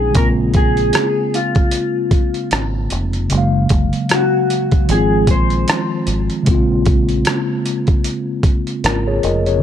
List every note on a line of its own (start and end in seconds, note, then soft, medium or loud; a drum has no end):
0.00 0.13 A#1 medium
0.00 0.11 F3 medium
0.00 0.11 G#3 medium
0.00 0.13 C4 medium
0.00 0.17 C#4 medium
0.00 0.14 D#4 medium
0.00 0.14 G#4 medium
0.11 3.25 C#3 medium
0.11 3.26 G#3 medium
0.11 closed hi-hat medium
0.15 0.91 A#1 loud
0.15 3.27 A#3 medium
0.15 3.28 C4 medium
0.15 0.27 A#4 loud
0.15 kick loud
0.19 3.29 F4 medium
0.54 1.37 G#4 loud
0.54 kick loud
0.54 closed hi-hat medium
0.77 closed hi-hat soft
0.93 cross-stick loud
0.93 closed hi-hat medium
1.34 2.49 F4 medium
1.34 closed hi-hat medium
1.55 kick medium
1.55 closed hi-hat soft
1.71 closed hi-hat medium
2.11 kick loud
2.11 closed hi-hat medium
2.34 closed hi-hat soft
2.51 2.88 G#1 medium
2.51 cross-stick loud
2.51 closed hi-hat medium
2.90 3.28 F1 medium
2.90 closed hi-hat medium
3.13 closed hi-hat soft
3.29 3.67 F#1 loud
3.29 4.85 C#3 medium
3.29 4.86 F#3 medium
3.29 closed hi-hat medium
3.33 4.87 G#3 medium
3.33 4.88 A#3 medium
3.38 4.89 F5 medium
3.69 3.91 F1 medium
3.69 kick loud
3.69 closed hi-hat medium
3.93 closed hi-hat soft
4.09 cross-stick loud
4.09 closed hi-hat medium
4.14 4.93 F#4 medium
4.50 closed hi-hat medium
4.71 kick medium
4.71 closed hi-hat soft
4.85 6.42 D#3 medium
4.85 6.43 F3 medium
4.85 closed hi-hat medium
4.89 5.25 G#1 loud
4.89 6.44 G#3 medium
4.89 6.45 C4 medium
4.89 5.30 G#4 loud
4.94 6.46 F4 medium
5.27 5.64 A#1 medium
5.27 6.05 C5 loud
5.27 kick medium
5.27 closed hi-hat medium
5.50 closed hi-hat soft
5.68 cross-stick loud
5.68 closed hi-hat medium
6.07 6.28 G#1 medium
6.07 closed hi-hat medium
6.30 closed hi-hat soft
6.43 9.17 C#3 medium
6.43 9.18 G#3 medium
6.43 closed hi-hat medium
6.47 7.22 A#1 medium
6.47 9.19 A#3 medium
6.47 9.20 C4 medium
6.47 8.82 F4 medium
6.47 kick loud
6.86 kick loud
6.86 closed hi-hat medium
7.09 closed hi-hat soft
7.25 cross-stick loud
7.25 closed hi-hat medium
7.66 closed hi-hat medium
7.87 kick medium
7.87 closed hi-hat soft
8.04 closed hi-hat medium
8.43 kick medium
8.43 closed hi-hat medium
8.67 closed hi-hat soft
8.84 9.20 G#1 medium
8.84 9.06 F4 soft
8.84 9.05 A#4 medium
8.84 cross-stick loud
8.84 closed hi-hat medium
9.07 9.23 G#4 medium
9.07 9.23 C#5 medium
9.23 9.60 F1 medium
9.23 9.45 A#4 medium
9.23 9.45 D#5 medium
9.23 closed hi-hat medium
9.46 9.63 G#4 medium
9.46 9.63 C#5 medium
9.46 closed hi-hat soft
9.58 9.63 C#3 medium